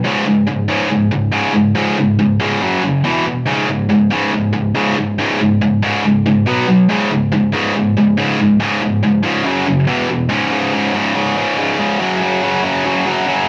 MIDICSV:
0, 0, Header, 1, 2, 480
1, 0, Start_track
1, 0, Key_signature, 4, "minor"
1, 0, Tempo, 428571
1, 47, Time_signature, 4, 2, 24, 8
1, 9648, Tempo, 423430
1, 15169, End_track
2, 0, Start_track
2, 0, Title_t, "Distorted electric guitar"
2, 0, Program_c, 0, 30
2, 50, Note_on_c, 0, 37, 88
2, 60, Note_on_c, 0, 44, 83
2, 66, Note_on_c, 0, 49, 100
2, 275, Note_off_c, 0, 37, 0
2, 280, Note_off_c, 0, 44, 0
2, 283, Note_off_c, 0, 49, 0
2, 297, Note_on_c, 0, 37, 67
2, 303, Note_on_c, 0, 44, 75
2, 509, Note_off_c, 0, 37, 0
2, 512, Note_off_c, 0, 44, 0
2, 530, Note_on_c, 0, 37, 68
2, 536, Note_on_c, 0, 44, 80
2, 746, Note_off_c, 0, 37, 0
2, 749, Note_off_c, 0, 44, 0
2, 767, Note_on_c, 0, 37, 102
2, 775, Note_on_c, 0, 44, 89
2, 782, Note_on_c, 0, 49, 104
2, 991, Note_off_c, 0, 37, 0
2, 995, Note_off_c, 0, 44, 0
2, 1002, Note_off_c, 0, 49, 0
2, 1005, Note_on_c, 0, 37, 79
2, 1009, Note_on_c, 0, 44, 86
2, 1224, Note_off_c, 0, 37, 0
2, 1226, Note_off_c, 0, 44, 0
2, 1244, Note_on_c, 0, 37, 72
2, 1247, Note_on_c, 0, 44, 79
2, 1464, Note_off_c, 0, 37, 0
2, 1465, Note_off_c, 0, 44, 0
2, 1480, Note_on_c, 0, 37, 89
2, 1488, Note_on_c, 0, 44, 101
2, 1498, Note_on_c, 0, 49, 104
2, 1711, Note_off_c, 0, 44, 0
2, 1712, Note_off_c, 0, 37, 0
2, 1721, Note_off_c, 0, 49, 0
2, 1724, Note_on_c, 0, 44, 82
2, 1725, Note_on_c, 0, 37, 74
2, 1945, Note_off_c, 0, 37, 0
2, 1945, Note_off_c, 0, 44, 0
2, 1964, Note_on_c, 0, 37, 91
2, 1971, Note_on_c, 0, 44, 95
2, 1984, Note_on_c, 0, 49, 100
2, 2195, Note_off_c, 0, 37, 0
2, 2198, Note_off_c, 0, 44, 0
2, 2204, Note_off_c, 0, 49, 0
2, 2216, Note_on_c, 0, 37, 64
2, 2219, Note_on_c, 0, 44, 78
2, 2431, Note_off_c, 0, 37, 0
2, 2433, Note_off_c, 0, 44, 0
2, 2450, Note_on_c, 0, 37, 73
2, 2452, Note_on_c, 0, 44, 80
2, 2668, Note_off_c, 0, 37, 0
2, 2669, Note_off_c, 0, 44, 0
2, 2684, Note_on_c, 0, 37, 98
2, 2695, Note_on_c, 0, 44, 96
2, 2703, Note_on_c, 0, 49, 114
2, 2915, Note_off_c, 0, 37, 0
2, 2920, Note_off_c, 0, 44, 0
2, 2925, Note_off_c, 0, 49, 0
2, 2931, Note_on_c, 0, 42, 82
2, 2936, Note_on_c, 0, 49, 86
2, 2947, Note_on_c, 0, 54, 100
2, 3159, Note_off_c, 0, 42, 0
2, 3161, Note_off_c, 0, 49, 0
2, 3166, Note_off_c, 0, 54, 0
2, 3178, Note_on_c, 0, 42, 79
2, 3181, Note_on_c, 0, 49, 89
2, 3393, Note_off_c, 0, 42, 0
2, 3394, Note_off_c, 0, 49, 0
2, 3403, Note_on_c, 0, 40, 91
2, 3413, Note_on_c, 0, 47, 98
2, 3423, Note_on_c, 0, 52, 94
2, 3629, Note_off_c, 0, 40, 0
2, 3634, Note_off_c, 0, 47, 0
2, 3643, Note_on_c, 0, 40, 68
2, 3645, Note_off_c, 0, 52, 0
2, 3647, Note_on_c, 0, 47, 83
2, 3866, Note_off_c, 0, 40, 0
2, 3868, Note_off_c, 0, 47, 0
2, 3879, Note_on_c, 0, 37, 81
2, 3888, Note_on_c, 0, 44, 84
2, 3897, Note_on_c, 0, 49, 99
2, 4109, Note_off_c, 0, 37, 0
2, 4113, Note_off_c, 0, 44, 0
2, 4122, Note_off_c, 0, 49, 0
2, 4122, Note_on_c, 0, 37, 70
2, 4127, Note_on_c, 0, 44, 76
2, 4345, Note_off_c, 0, 37, 0
2, 4348, Note_off_c, 0, 44, 0
2, 4364, Note_on_c, 0, 37, 69
2, 4369, Note_on_c, 0, 44, 86
2, 4587, Note_off_c, 0, 37, 0
2, 4589, Note_off_c, 0, 44, 0
2, 4601, Note_on_c, 0, 37, 91
2, 4611, Note_on_c, 0, 44, 107
2, 4619, Note_on_c, 0, 49, 103
2, 4830, Note_off_c, 0, 37, 0
2, 4836, Note_off_c, 0, 44, 0
2, 4844, Note_off_c, 0, 49, 0
2, 4844, Note_on_c, 0, 37, 72
2, 4849, Note_on_c, 0, 44, 85
2, 5059, Note_off_c, 0, 37, 0
2, 5065, Note_off_c, 0, 44, 0
2, 5072, Note_on_c, 0, 37, 75
2, 5079, Note_on_c, 0, 44, 80
2, 5301, Note_off_c, 0, 37, 0
2, 5304, Note_off_c, 0, 44, 0
2, 5317, Note_on_c, 0, 37, 96
2, 5327, Note_on_c, 0, 44, 98
2, 5331, Note_on_c, 0, 49, 98
2, 5553, Note_off_c, 0, 37, 0
2, 5553, Note_off_c, 0, 44, 0
2, 5560, Note_off_c, 0, 49, 0
2, 5566, Note_on_c, 0, 37, 81
2, 5566, Note_on_c, 0, 44, 75
2, 5788, Note_off_c, 0, 37, 0
2, 5788, Note_off_c, 0, 44, 0
2, 5805, Note_on_c, 0, 37, 94
2, 5814, Note_on_c, 0, 44, 92
2, 5821, Note_on_c, 0, 49, 103
2, 6037, Note_off_c, 0, 37, 0
2, 6042, Note_off_c, 0, 44, 0
2, 6045, Note_off_c, 0, 49, 0
2, 6051, Note_on_c, 0, 37, 74
2, 6055, Note_on_c, 0, 44, 74
2, 6271, Note_off_c, 0, 37, 0
2, 6273, Note_off_c, 0, 44, 0
2, 6288, Note_on_c, 0, 37, 72
2, 6292, Note_on_c, 0, 44, 76
2, 6509, Note_off_c, 0, 37, 0
2, 6511, Note_off_c, 0, 44, 0
2, 6524, Note_on_c, 0, 37, 100
2, 6535, Note_on_c, 0, 44, 94
2, 6539, Note_on_c, 0, 49, 104
2, 6756, Note_off_c, 0, 37, 0
2, 6762, Note_off_c, 0, 44, 0
2, 6764, Note_off_c, 0, 49, 0
2, 6776, Note_on_c, 0, 37, 76
2, 6778, Note_on_c, 0, 44, 89
2, 6993, Note_off_c, 0, 37, 0
2, 6994, Note_off_c, 0, 44, 0
2, 7009, Note_on_c, 0, 37, 79
2, 7013, Note_on_c, 0, 44, 86
2, 7229, Note_off_c, 0, 37, 0
2, 7231, Note_off_c, 0, 44, 0
2, 7244, Note_on_c, 0, 47, 88
2, 7254, Note_on_c, 0, 54, 105
2, 7262, Note_on_c, 0, 59, 108
2, 7475, Note_off_c, 0, 54, 0
2, 7476, Note_off_c, 0, 47, 0
2, 7485, Note_off_c, 0, 59, 0
2, 7489, Note_on_c, 0, 54, 84
2, 7490, Note_on_c, 0, 47, 79
2, 7709, Note_off_c, 0, 47, 0
2, 7709, Note_off_c, 0, 54, 0
2, 7721, Note_on_c, 0, 37, 88
2, 7732, Note_on_c, 0, 44, 98
2, 7737, Note_on_c, 0, 49, 102
2, 7949, Note_off_c, 0, 37, 0
2, 7960, Note_off_c, 0, 44, 0
2, 7962, Note_off_c, 0, 49, 0
2, 7962, Note_on_c, 0, 37, 75
2, 7971, Note_on_c, 0, 44, 76
2, 8184, Note_off_c, 0, 37, 0
2, 8189, Note_off_c, 0, 44, 0
2, 8201, Note_on_c, 0, 37, 78
2, 8209, Note_on_c, 0, 44, 89
2, 8424, Note_off_c, 0, 37, 0
2, 8427, Note_off_c, 0, 44, 0
2, 8439, Note_on_c, 0, 37, 102
2, 8448, Note_on_c, 0, 44, 103
2, 8453, Note_on_c, 0, 49, 112
2, 8672, Note_off_c, 0, 37, 0
2, 8676, Note_off_c, 0, 44, 0
2, 8679, Note_off_c, 0, 49, 0
2, 8689, Note_on_c, 0, 37, 87
2, 8693, Note_on_c, 0, 44, 89
2, 8906, Note_off_c, 0, 37, 0
2, 8908, Note_off_c, 0, 44, 0
2, 8930, Note_on_c, 0, 37, 81
2, 8930, Note_on_c, 0, 44, 85
2, 9142, Note_off_c, 0, 37, 0
2, 9147, Note_off_c, 0, 44, 0
2, 9155, Note_on_c, 0, 37, 99
2, 9164, Note_on_c, 0, 44, 102
2, 9174, Note_on_c, 0, 49, 99
2, 9388, Note_off_c, 0, 37, 0
2, 9392, Note_off_c, 0, 44, 0
2, 9398, Note_off_c, 0, 49, 0
2, 9401, Note_on_c, 0, 37, 83
2, 9408, Note_on_c, 0, 44, 84
2, 9617, Note_off_c, 0, 37, 0
2, 9624, Note_off_c, 0, 44, 0
2, 9631, Note_on_c, 0, 37, 88
2, 9636, Note_on_c, 0, 44, 101
2, 9645, Note_on_c, 0, 49, 102
2, 9858, Note_off_c, 0, 37, 0
2, 9863, Note_off_c, 0, 44, 0
2, 9871, Note_on_c, 0, 37, 70
2, 9874, Note_off_c, 0, 49, 0
2, 9876, Note_on_c, 0, 44, 74
2, 10099, Note_off_c, 0, 37, 0
2, 10101, Note_off_c, 0, 44, 0
2, 10123, Note_on_c, 0, 37, 77
2, 10130, Note_on_c, 0, 44, 86
2, 10336, Note_off_c, 0, 37, 0
2, 10348, Note_off_c, 0, 44, 0
2, 10349, Note_on_c, 0, 37, 106
2, 10362, Note_on_c, 0, 44, 101
2, 10369, Note_on_c, 0, 49, 109
2, 10588, Note_off_c, 0, 37, 0
2, 10588, Note_off_c, 0, 49, 0
2, 10594, Note_off_c, 0, 44, 0
2, 10594, Note_on_c, 0, 42, 95
2, 10601, Note_on_c, 0, 49, 103
2, 10610, Note_on_c, 0, 54, 99
2, 10821, Note_off_c, 0, 42, 0
2, 10829, Note_off_c, 0, 49, 0
2, 10835, Note_on_c, 0, 42, 82
2, 10839, Note_off_c, 0, 54, 0
2, 10842, Note_on_c, 0, 49, 78
2, 11062, Note_off_c, 0, 42, 0
2, 11066, Note_off_c, 0, 49, 0
2, 11075, Note_on_c, 0, 40, 98
2, 11084, Note_on_c, 0, 47, 109
2, 11089, Note_on_c, 0, 52, 99
2, 11308, Note_off_c, 0, 40, 0
2, 11316, Note_off_c, 0, 47, 0
2, 11319, Note_off_c, 0, 52, 0
2, 11322, Note_on_c, 0, 40, 83
2, 11328, Note_on_c, 0, 47, 91
2, 11546, Note_off_c, 0, 40, 0
2, 11549, Note_off_c, 0, 47, 0
2, 11551, Note_on_c, 0, 37, 104
2, 11562, Note_on_c, 0, 44, 94
2, 11567, Note_on_c, 0, 49, 110
2, 11782, Note_off_c, 0, 37, 0
2, 11791, Note_off_c, 0, 44, 0
2, 11793, Note_off_c, 0, 49, 0
2, 11796, Note_on_c, 0, 37, 89
2, 11805, Note_on_c, 0, 44, 88
2, 11807, Note_on_c, 0, 49, 98
2, 12026, Note_off_c, 0, 37, 0
2, 12037, Note_off_c, 0, 44, 0
2, 12039, Note_on_c, 0, 37, 85
2, 12042, Note_off_c, 0, 49, 0
2, 12051, Note_on_c, 0, 44, 89
2, 12055, Note_on_c, 0, 49, 89
2, 12268, Note_off_c, 0, 37, 0
2, 12274, Note_off_c, 0, 44, 0
2, 12282, Note_on_c, 0, 37, 108
2, 12284, Note_off_c, 0, 49, 0
2, 12288, Note_on_c, 0, 44, 120
2, 12297, Note_on_c, 0, 49, 124
2, 12506, Note_off_c, 0, 37, 0
2, 12515, Note_off_c, 0, 44, 0
2, 12520, Note_off_c, 0, 49, 0
2, 12520, Note_on_c, 0, 37, 77
2, 12529, Note_on_c, 0, 44, 89
2, 12534, Note_on_c, 0, 49, 83
2, 12745, Note_off_c, 0, 37, 0
2, 12757, Note_off_c, 0, 44, 0
2, 12759, Note_on_c, 0, 37, 89
2, 12765, Note_off_c, 0, 49, 0
2, 12771, Note_on_c, 0, 44, 103
2, 12778, Note_on_c, 0, 49, 101
2, 12995, Note_off_c, 0, 37, 0
2, 13003, Note_off_c, 0, 44, 0
2, 13008, Note_off_c, 0, 49, 0
2, 13009, Note_on_c, 0, 37, 103
2, 13016, Note_on_c, 0, 44, 100
2, 13022, Note_on_c, 0, 49, 117
2, 13233, Note_off_c, 0, 37, 0
2, 13245, Note_off_c, 0, 44, 0
2, 13247, Note_on_c, 0, 37, 83
2, 13252, Note_off_c, 0, 49, 0
2, 13259, Note_on_c, 0, 44, 98
2, 13265, Note_on_c, 0, 49, 94
2, 13477, Note_off_c, 0, 37, 0
2, 13482, Note_off_c, 0, 49, 0
2, 13483, Note_off_c, 0, 44, 0
2, 13487, Note_on_c, 0, 42, 94
2, 13496, Note_on_c, 0, 49, 110
2, 13501, Note_on_c, 0, 54, 111
2, 13713, Note_off_c, 0, 42, 0
2, 13725, Note_off_c, 0, 49, 0
2, 13727, Note_on_c, 0, 42, 84
2, 13729, Note_off_c, 0, 54, 0
2, 13738, Note_on_c, 0, 49, 78
2, 13743, Note_on_c, 0, 54, 89
2, 13954, Note_off_c, 0, 42, 0
2, 13964, Note_off_c, 0, 49, 0
2, 13968, Note_on_c, 0, 42, 85
2, 13970, Note_off_c, 0, 54, 0
2, 13977, Note_on_c, 0, 49, 87
2, 13984, Note_on_c, 0, 54, 96
2, 14191, Note_off_c, 0, 42, 0
2, 14204, Note_off_c, 0, 49, 0
2, 14205, Note_on_c, 0, 42, 97
2, 14208, Note_off_c, 0, 54, 0
2, 14217, Note_on_c, 0, 49, 108
2, 14222, Note_on_c, 0, 54, 115
2, 14431, Note_off_c, 0, 42, 0
2, 14443, Note_off_c, 0, 49, 0
2, 14445, Note_on_c, 0, 42, 89
2, 14448, Note_off_c, 0, 54, 0
2, 14457, Note_on_c, 0, 49, 99
2, 14461, Note_on_c, 0, 54, 100
2, 14678, Note_off_c, 0, 42, 0
2, 14684, Note_off_c, 0, 49, 0
2, 14692, Note_on_c, 0, 42, 94
2, 14694, Note_off_c, 0, 54, 0
2, 14698, Note_on_c, 0, 49, 95
2, 14708, Note_on_c, 0, 54, 98
2, 14910, Note_off_c, 0, 42, 0
2, 14923, Note_off_c, 0, 49, 0
2, 14923, Note_on_c, 0, 42, 106
2, 14925, Note_off_c, 0, 54, 0
2, 14937, Note_on_c, 0, 49, 98
2, 14938, Note_on_c, 0, 54, 99
2, 15162, Note_off_c, 0, 42, 0
2, 15168, Note_off_c, 0, 49, 0
2, 15169, Note_off_c, 0, 54, 0
2, 15169, End_track
0, 0, End_of_file